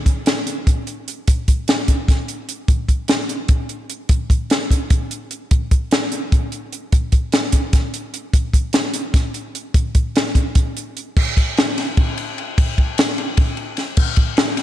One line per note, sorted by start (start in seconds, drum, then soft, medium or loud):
0.06 kick medium
0.06 closed hi-hat medium
0.26 snare medium
0.26 closed hi-hat medium
0.47 closed hi-hat medium
0.67 kick medium
0.67 closed hi-hat medium
0.87 closed hi-hat soft
1.08 closed hi-hat medium
1.27 kick loud
1.27 closed hi-hat medium
1.48 kick medium
1.48 closed hi-hat medium
1.68 snare medium
1.68 closed hi-hat medium
1.88 kick medium
1.88 closed hi-hat medium
2.08 kick loud
2.08 snare soft
2.08 closed hi-hat medium
2.28 closed hi-hat soft
2.49 closed hi-hat medium
2.68 kick loud
2.68 closed hi-hat medium
2.89 kick medium
2.89 closed hi-hat medium
3.08 snare medium
3.08 closed hi-hat medium
3.29 closed hi-hat medium
3.48 kick loud
3.48 closed hi-hat medium
3.69 closed hi-hat soft
3.90 closed hi-hat medium
4.09 kick medium
4.09 closed hi-hat medium
4.30 kick medium
4.30 closed hi-hat medium
4.50 snare medium
4.50 closed hi-hat medium
4.71 kick medium
4.71 closed hi-hat medium
4.90 kick loud
4.90 closed hi-hat medium
5.11 closed hi-hat medium
5.31 closed hi-hat medium
5.51 kick medium
5.51 closed hi-hat medium
5.71 kick medium
5.71 closed hi-hat medium
5.91 snare medium
5.91 closed hi-hat medium
6.12 closed hi-hat medium
6.32 kick loud
6.32 closed hi-hat medium
6.52 closed hi-hat soft
6.72 closed hi-hat medium
6.92 kick loud
6.92 closed hi-hat medium
7.12 kick medium
7.12 closed hi-hat medium
7.32 snare medium
7.32 closed hi-hat medium
7.52 kick medium
7.52 closed hi-hat medium
7.73 kick loud
7.73 snare soft
7.73 closed hi-hat medium
7.94 closed hi-hat medium
8.14 closed hi-hat medium
8.33 kick loud
8.33 closed hi-hat medium
8.53 kick medium
8.53 closed hi-hat medium
8.73 snare medium
8.73 closed hi-hat medium
8.94 closed hi-hat medium
9.14 kick loud
9.14 snare soft
9.14 closed hi-hat medium
9.34 closed hi-hat medium
9.55 closed hi-hat medium
9.74 kick loud
9.74 closed hi-hat medium
9.95 kick medium
9.95 closed hi-hat medium
10.16 snare medium
10.16 closed hi-hat medium
10.35 kick medium
10.35 closed hi-hat medium
10.55 kick loud
10.55 closed hi-hat medium
10.77 closed hi-hat medium
10.97 closed hi-hat medium
11.17 kick loud
11.17 crash loud
11.37 kick medium
11.37 ride medium
11.57 snare loud
11.57 ride medium
11.78 snare soft
11.78 ride medium
11.97 kick loud
11.97 ride loud
12.18 ride medium
12.38 ride medium
12.58 kick loud
12.58 ride loud
12.78 kick medium
12.78 ride medium
12.98 snare loud
12.98 ride loud
13.18 ride medium
13.37 kick loud
13.37 ride loud
13.57 ride medium
13.77 snare soft
13.77 ride medium
13.97 kick loud
13.97 crash loud
14.16 kick medium
14.16 ride medium
14.37 snare loud
14.37 ride loud
14.57 snare soft
14.57 ride medium